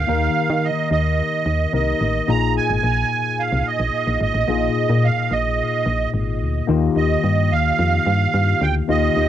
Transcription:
Already playing: F5
0.07 D#2 D#3 A#3 D#4 G4 A#4
0.50 D#3
0.64 D#5
0.91 D#2 D#5
1.46 D#2
1.73 C2 A#3 D#4 G4 A#4 D#5
2.01 A1
2.27 A#1 A#2 A#3 D#4 F4 G#4 A#5
2.57 G#5
2.70 G#1
2.83 A#1
3.39 F5
3.52 C2
3.67 D#5
3.80 A#1
4.07 A#1
4.21 G#1 D#5
4.35 A1
4.47 A#1 A#2 A#3 D#4 F4 G#4
4.90 A#2
5.05 F5
5.31 A#1 D#5
5.86 A#1
6.14 G#1
6.41 D2
6.67 D#2 D#3 A#3 D#4 F4 G4
6.96 D#2 D#5
7.24 G2
7.52 D#2 F5
7.79 F2
8.07 G2
8.34 G2
8.61 D2 G5
8.88 D#2 D#3 A#3 D#4 F4 G4 D#5
9.17 D#2

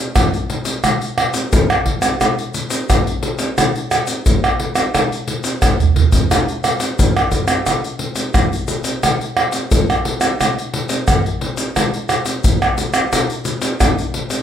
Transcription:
0.16 pandeiro, tamborim, shaker, surdo
0.34 pandeiro, shaker
0.50 pandeiro
0.65 pandeiro, shaker
0.84 pandeiro, tamborim, shaker, surdo
1.02 pandeiro, shaker
1.18 pandeiro, tamborim
1.34 pandeiro, shaker
1.53 pandeiro, shaker, surdo
1.70 pandeiro, tamborim, shaker
1.86 pandeiro, surdo
2.02 pandeiro, tamborim, shaker
2.21 pandeiro, tamborim, shaker, surdo
2.39 pandeiro, shaker
2.54 pandeiro, shaker
2.70 pandeiro, shaker
2.90 pandeiro, tamborim, shaker, surdo
3.07 pandeiro, shaker
3.23 pandeiro
3.39 pandeiro, shaker
3.58 pandeiro, tamborim, shaker, surdo
3.76 pandeiro, shaker
3.91 pandeiro, tamborim, shaker
4.07 pandeiro, shaker
4.26 pandeiro, shaker, surdo
4.44 pandeiro, tamborim, shaker
4.60 pandeiro
4.75 pandeiro, tamborim, shaker
4.94 pandeiro, tamborim, shaker, surdo
5.12 pandeiro, shaker
5.28 pandeiro
5.44 pandeiro, shaker
5.62 pandeiro, tamborim, shaker, surdo
5.80 surdo, pandeiro, shaker
5.96 surdo, pandeiro
6.12 pandeiro, shaker, surdo
6.31 pandeiro, tamborim, shaker, surdo
6.48 pandeiro, shaker
6.64 pandeiro, tamborim, shaker
6.80 pandeiro, shaker
6.99 pandeiro, shaker, surdo
7.17 pandeiro, tamborim, shaker
7.32 pandeiro, shaker, surdo
7.48 pandeiro, tamborim, shaker
7.66 pandeiro, tamborim, shaker, surdo
7.84 pandeiro, shaker
7.99 pandeiro
8.16 pandeiro, shaker
8.34 pandeiro, tamborim, shaker, surdo
8.53 pandeiro, shaker
8.68 pandeiro, shaker
8.84 pandeiro, shaker
9.03 pandeiro, tamborim, shaker, surdo
9.21 pandeiro, shaker
9.37 pandeiro, tamborim
9.52 pandeiro, shaker
9.71 pandeiro, shaker, surdo
9.90 pandeiro, tamborim, shaker
10.05 pandeiro
10.21 pandeiro, tamborim, shaker
10.41 pandeiro, tamborim, shaker, surdo
10.59 pandeiro, shaker
10.74 pandeiro
10.89 pandeiro, shaker
11.08 pandeiro, tamborim, shaker, surdo
11.26 pandeiro, shaker
11.41 pandeiro
11.57 pandeiro, shaker
11.76 pandeiro, tamborim, shaker, surdo
11.94 pandeiro, shaker
12.09 pandeiro, tamborim, shaker
12.26 pandeiro, shaker
12.44 pandeiro, shaker, surdo
12.62 pandeiro, tamborim, shaker
12.78 pandeiro, shaker
12.94 pandeiro, tamborim, shaker
13.13 pandeiro, tamborim, shaker, surdo
13.30 pandeiro, shaker
13.45 pandeiro, shaker
13.62 pandeiro, shaker
13.80 pandeiro, tamborim, shaker, surdo
13.98 pandeiro, shaker
14.14 pandeiro
14.30 pandeiro, shaker

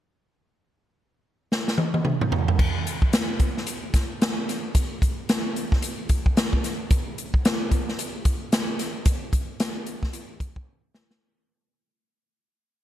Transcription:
1.52 snare
1.68 snare
1.78 high tom
1.94 high tom
2.05 mid tom
2.21 mid tom
2.32 floor tom
2.48 floor tom
2.59 kick, crash
2.87 closed hi-hat
3.02 kick
3.13 snare, closed hi-hat
3.40 kick, closed hi-hat
3.57 snare
3.67 closed hi-hat
3.94 kick, snare, closed hi-hat
4.22 snare, closed hi-hat
4.49 snare, closed hi-hat
4.75 kick, closed hi-hat
5.02 kick, closed hi-hat
5.29 snare, closed hi-hat
5.56 closed hi-hat
5.72 kick, snare
5.82 closed hi-hat
6.09 kick, closed hi-hat
6.26 kick
6.37 snare, closed hi-hat
6.53 kick
6.64 snare, closed hi-hat
6.91 kick, closed hi-hat
7.18 closed hi-hat
7.34 kick
7.45 snare, closed hi-hat
7.71 kick, closed hi-hat
7.89 snare
7.99 closed hi-hat
8.25 kick, closed hi-hat
8.52 snare, closed hi-hat
8.79 snare, closed hi-hat
9.05 kick, closed hi-hat
9.33 kick, closed hi-hat
9.60 snare, closed hi-hat
9.86 closed hi-hat
10.03 kick, snare
10.13 closed hi-hat
10.40 kick, closed hi-hat
10.56 kick
10.95 snare
11.11 snare

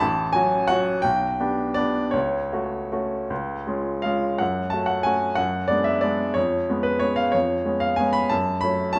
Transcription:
0.00 A1 A5
0.33 F#3 C#4 F#4 G#5
0.68 F#3 C#4 F#4 F#5
1.02 B1 G5
1.40 B3 D4 G4
1.74 B3 D4 G4 D5
2.11 C#2 C#5
2.53 A3 C#4 F#4
2.92 A3 C#4 F#4
3.30 C#2
3.67 G#3 C#4 F4
4.02 G#3 C#4 F4 F5
4.38 F#2 F#5
4.70 A3 C#4 F#4 A5
4.86 F#5
5.03 A3 C#4 F#4 G#5
5.35 F#2 F#5
5.68 G#3 B3 D4 D5
5.84 E5
6.01 G#3 B3 D4 D5
6.34 F2 C#5
6.69 G#3 B3 C#4
6.83 B4
6.99 G#3 B3 C#4 C#5
7.16 F5
7.32 F2 C#5
7.65 G#3 B3 C#4
7.80 F5
7.96 G#3 B3 C#4 G#5
8.13 B5
8.29 F#2 A5
8.61 F#3 A3 C#4 B5
8.93 F#3 A3 C#4 A5

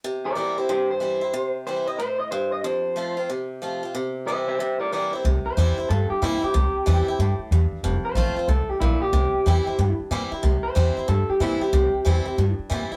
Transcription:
0.04 C3
0.25 A#4 D5
0.35 E3 G3 C4 E4 A#4 D5
0.57 C4 E4 G4 C5
0.69 G2 G4 C5
0.91 C5
1.00 E3 G3 C4 E4
1.21 C4 E4
1.34 C3
1.67 E3 G3 C4 E4 C5
1.87 C4 E4 D#5
1.99 A2 C5
2.20 D#5
2.31 G2 C5
2.52 D#5
2.64 F2 C5
2.96 F3 A3 C4 F4
3.17 C4 F4
3.30 C3
3.62 F3 A3 C4 F4
3.83 C4 F4
3.95 C3
4.27 E3 G3 C4 E4 C5 E5
4.48 C5 E5
4.59 G2 C5 E5
4.80 A#4 D5
4.92 E3 G3 C4 E4 A#4 D5
5.13 C4 E4 C5
5.24 C2 C3
5.46 C5, muted upright bass stroke
5.57 E2 E3 G3 C4 E4
5.78 C4 E4, muted upright bass stroke
5.89 G2 A4
6.10 G4, muted upright bass stroke
6.22 A#2 E3 G3 C4 E4
6.42 C4 E4 G4, muted upright bass stroke
6.54 C2 C3
6.75 muted upright bass stroke
6.86 E2 E3 G3 C4 E4
7.07 C4 E4, muted upright bass stroke
7.19 G2 A2
7.39 muted upright bass stroke
7.51 E2 G2
7.71 muted upright bass stroke
7.83 F1 F2
8.03 C5, muted upright bass stroke
8.15 A1 F3 A3 C4 F4
8.36 C4 F4, muted upright bass stroke
8.48 C2 A2 A4
8.69 G4, muted upright bass stroke
8.80 A#1 A#2 E4
9.01 G4, muted upright bass stroke
9.12 C2 C3
9.34 muted upright bass stroke
9.46 E2 E3 G3 C4 E4
9.67 C4 E4, muted upright bass stroke
9.79 G2
10.00 muted upright bass stroke
10.11 A#2 E3 G3 C4 E4
10.32 C4 E4, muted upright bass stroke
10.43 C2 C3
10.63 C5, muted upright bass stroke
10.75 E2 E3 G3 C4 E4
10.97 C4 E4, muted upright bass stroke
11.08 G2 A4
11.29 G4, muted upright bass stroke
11.40 A#2 E3 G3 C4 E4
11.61 C4 E4 G4, muted upright bass stroke
11.73 C2 C3
11.94 muted upright bass stroke
12.05 E2 E3 G3 C4 E4
12.25 C4 E4, muted upright bass stroke
12.38 G2
12.59 muted upright bass stroke
12.70 A#2 E3 G3 C4 E4
12.92 E4, muted upright bass stroke

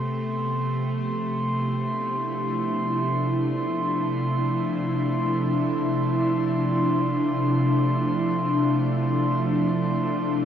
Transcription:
Already playing: C3 F3 A3 B3 G4 C6
1.09 E4
1.18 D4
9.99 F4

